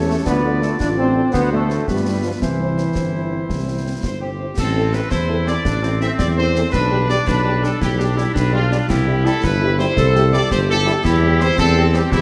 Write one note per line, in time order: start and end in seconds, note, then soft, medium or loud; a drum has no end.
0.00 0.17 E2 medium
0.00 0.25 C#4 medium
0.00 0.22 G4 medium
0.00 0.26 C#5 medium
0.07 0.16 A3 medium
0.07 0.15 C#4 medium
0.07 0.15 G4 medium
0.07 0.25 A4 medium
0.07 0.15 A4 medium
0.24 0.71 D2 medium
0.24 0.60 B3 loud
0.24 0.79 D4 medium
0.24 1.34 F4 medium
0.24 0.60 B4 medium
0.24 1.30 D5 medium
0.24 concert bass drum medium
0.24 snare medium
0.24 crash soft
0.44 0.51 D4 medium
0.44 0.51 F4 medium
0.44 0.51 A4 medium
0.61 0.80 A3 medium
0.61 0.69 D4 medium
0.61 0.69 F4 medium
0.61 0.70 A4 medium
0.61 0.69 A4 medium
0.61 snare soft
0.79 1.21 A1 medium
0.79 0.88 D4 loud
0.79 1.12 F4 medium
0.79 0.89 D5 medium
0.79 concert bass drum medium
0.79 snare medium
0.97 1.31 C4 medium
0.97 1.04 D4 medium
0.97 1.04 F4 medium
0.97 1.04 A4 medium
0.97 1.32 C5 medium
1.15 1.22 D4 medium
1.15 1.22 F4 medium
1.15 1.22 A4 medium
1.33 1.79 D2 medium
1.33 1.50 B3 loud
1.33 1.85 D4 medium
1.33 1.84 F#4 medium
1.33 1.42 B4 medium
1.33 1.84 C5 medium
1.33 concert bass drum medium
1.33 snare medium
1.51 1.86 A3 medium
1.51 1.58 D4 medium
1.51 1.58 F#4 medium
1.51 1.86 A4 medium
1.51 1.58 C5 medium
1.70 1.76 D4 soft
1.70 1.76 F#4 medium
1.70 1.76 C5 medium
1.70 snare soft
1.88 2.33 G2 medium
1.88 2.24 G3 medium
1.88 2.38 B3 medium
1.88 2.42 F4 medium
1.88 2.21 G4 medium
1.88 2.38 B4 medium
1.88 concert bass drum medium
1.88 snare medium
2.06 2.13 D4 medium
2.06 2.13 F4 soft
2.06 2.13 B4 medium
2.23 2.31 F3 medium
2.23 2.30 D4 medium
2.23 2.30 F4 soft
2.23 2.32 F4 medium
2.23 2.30 B4 medium
2.40 2.87 C2 medium
2.40 3.99 E3 medium
2.40 4.26 C4 medium
2.40 4.00 E4 medium
2.40 4.40 E4 medium
2.40 4.40 C5 medium
2.40 concert bass drum medium
2.40 snare medium
2.60 2.66 C4 medium
2.60 2.66 E4 medium
2.60 2.66 C5 medium
2.77 2.84 C4 soft
2.77 2.84 E4 soft
2.77 2.84 C5 soft
2.77 snare soft
2.95 3.41 G1 medium
2.95 concert bass drum medium
2.95 snare medium
3.13 3.20 C4 medium
3.13 3.20 E4 medium
3.13 3.20 C5 soft
3.32 3.38 C4 soft
3.32 3.38 E4 soft
3.32 3.38 C5 soft
3.50 3.95 C2 medium
3.50 concert bass drum medium
3.50 snare medium
3.68 3.74 C4 soft
3.68 3.74 E4 soft
3.68 3.74 C5 soft
3.85 3.92 C4 soft
3.85 3.92 E4 soft
3.85 3.92 C5 soft
4.03 4.49 G1 medium
4.03 4.20 C5 medium
4.03 concert bass drum medium
4.03 snare medium
4.21 4.28 C4 soft
4.21 4.28 E4 soft
4.21 4.55 G4 medium
4.21 4.28 C5 soft
4.39 4.45 C4 soft
4.39 4.46 E4 soft
4.39 4.46 C5 soft
4.57 5.02 A1 medium
4.57 5.08 C4 medium
4.57 4.91 A4 loud
4.57 concert bass drum medium
4.57 snare medium
4.57 crash medium
4.75 4.82 C4 medium
4.75 4.82 E4 medium
4.75 4.82 A4 medium
4.93 5.00 E3 medium
4.93 5.00 C4 medium
4.93 5.00 E4 medium
4.93 5.00 A4 medium
4.93 5.11 B4 loud
4.93 snare medium
5.11 5.56 E2 medium
5.11 5.62 E4 medium
5.11 5.45 C5 medium
5.11 concert bass drum medium
5.11 snare medium
5.29 5.36 C4 medium
5.29 5.36 E4 medium
5.29 5.36 A4 medium
5.46 5.53 E3 medium
5.46 5.53 C4 medium
5.46 5.54 C4 medium
5.46 5.54 E4 medium
5.46 5.54 A4 medium
5.46 5.98 D5 loud
5.46 snare medium
5.65 6.10 A1 medium
5.65 5.83 D4 medium
5.65 concert bass drum medium
5.65 snare medium
5.83 6.00 C4 medium
5.83 5.90 C4 medium
5.83 5.90 E4 medium
5.83 5.90 A4 medium
5.83 snare soft
6.01 6.07 E3 medium
6.01 6.07 C4 medium
6.01 6.69 C4 medium
6.01 6.08 C4 medium
6.01 6.08 E4 medium
6.01 6.08 A4 medium
6.01 6.09 E5 loud
6.01 snare medium
6.19 6.64 E2 medium
6.19 6.27 D5 loud
6.19 concert bass drum medium
6.19 snare medium
6.37 6.44 C4 medium
6.37 6.44 E4 medium
6.37 6.44 A4 medium
6.37 6.70 C5 loud
6.54 6.61 E3 medium
6.54 6.61 C4 medium
6.54 6.62 C4 medium
6.54 6.62 E4 medium
6.54 6.62 A4 medium
6.54 snare medium
6.72 7.18 B1 medium
6.72 7.23 D4 medium
6.72 7.06 B4 loud
6.72 concert bass drum medium
6.72 snare medium
6.91 6.98 G3 medium
6.91 6.98 D4 medium
6.91 6.98 G4 medium
7.08 7.16 G3 medium
7.08 7.15 D4 medium
7.08 7.16 D4 medium
7.08 7.15 G4 medium
7.08 7.25 D5 loud
7.08 snare medium
7.27 7.72 B1 medium
7.27 7.77 D4 medium
7.27 7.63 B4 loud
7.27 concert bass drum medium
7.27 snare medium
7.44 7.51 G3 medium
7.44 7.51 D4 medium
7.44 7.51 G4 medium
7.62 7.69 G3 medium
7.62 7.69 D4 medium
7.62 7.69 G4 medium
7.62 7.81 A4 loud
7.62 snare medium
7.81 8.26 B1 medium
7.81 7.99 E4 medium
7.81 8.31 G4 loud
7.81 concert bass drum medium
7.81 snare medium
7.98 8.05 G3 medium
7.98 8.17 D4 medium
7.98 8.05 D4 medium
7.98 8.05 G4 medium
7.98 snare medium
8.16 8.23 G3 medium
8.16 8.23 D4 medium
8.16 8.35 E4 medium
8.16 8.23 G4 medium
8.16 snare medium
8.34 8.80 B1 medium
8.34 8.84 D4 medium
8.34 8.53 B4 loud
8.34 concert bass drum medium
8.34 snare medium
8.52 8.59 G3 medium
8.52 8.59 D4 medium
8.52 8.87 F4 loud
8.52 8.59 G4 medium
8.71 8.77 G3 medium
8.71 8.77 D4 medium
8.71 8.78 D4 medium
8.71 8.78 G4 medium
8.71 snare medium
8.88 9.30 C2 medium
8.88 9.92 E4 medium
8.88 9.25 G4 loud
8.88 concert bass drum medium
8.88 snare medium
8.88 crash soft
9.07 9.13 G3 medium
9.07 9.13 E4 medium
9.07 9.13 G4 medium
9.24 9.31 G3 medium
9.24 9.32 G3 medium
9.24 9.31 E4 medium
9.24 9.32 G4 medium
9.24 9.42 A4 loud
9.24 snare medium
9.43 9.88 G1 loud
9.43 9.79 B4 loud
9.43 concert bass drum medium
9.43 snare medium
9.61 9.68 G3 medium
9.61 9.68 E4 medium
9.61 9.68 G4 medium
9.78 9.85 G3 medium
9.78 9.85 E4 medium
9.78 9.85 G4 medium
9.78 10.17 C5 loud
9.78 snare medium
9.96 10.41 C2 loud
9.96 10.47 A4 loud
9.96 concert bass drum medium
9.96 snare medium
10.15 10.22 G3 medium
10.15 10.22 E4 medium
10.15 10.22 G4 medium
10.15 snare medium
10.32 10.39 G3 medium
10.32 10.40 G3 medium
10.32 10.39 E4 medium
10.32 10.40 E4 medium
10.32 10.40 G4 medium
10.32 10.49 D5 loud
10.32 snare medium
10.50 10.95 G1 medium
10.50 10.88 G4 medium
10.50 10.58 C5 loud
10.50 concert bass drum medium
10.50 snare medium
10.68 10.75 G3 medium
10.68 10.75 E4 medium
10.68 10.75 G4 medium
10.68 11.02 A4 loud
10.86 10.92 G3 loud
10.86 10.93 G3 medium
10.86 10.92 E4 medium
10.86 10.93 E4 medium
10.86 10.93 G4 medium
10.86 snare medium
11.04 11.49 E2 loud
11.04 11.54 E4 medium
11.04 11.40 G4 loud
11.04 concert bass drum medium
11.04 snare medium
11.22 11.29 G3 medium
11.22 11.29 C4 medium
11.22 11.29 G4 medium
11.39 11.46 G3 medium
11.39 11.47 G3 medium
11.39 11.46 C4 medium
11.39 11.47 C4 medium
11.39 11.47 G4 medium
11.39 11.58 C5 loud
11.39 snare medium
11.58 12.03 E2 loud
11.58 12.08 C4 loud
11.58 11.92 A4 loud
11.58 concert bass drum medium
11.58 snare medium
11.76 11.83 G3 medium
11.76 11.83 C4 medium
11.76 11.83 G4 medium
11.93 12.00 G3 loud
11.93 12.01 G3 medium
11.93 12.00 C4 medium
11.93 12.01 C4 medium
11.93 12.01 G4 medium
11.93 12.12 G4 loud
11.93 snare medium
12.11 12.21 E2 loud
12.11 12.21 E4 loud
12.11 12.21 G4 loud
12.11 concert bass drum medium
12.11 snare medium